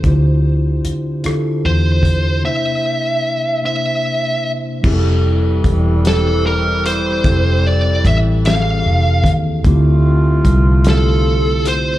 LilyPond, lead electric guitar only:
\new Staff \with { instrumentName = "Lead electric guitar" } { \time 6/8 \key f \major \tempo 4. = 50 r2 c''4 | e''4. e''4 r8 | r4. a'8 bes'8 c''8~ | c''8 d''8 e''8 f''4 r8 |
r4. a'4 c''8 | }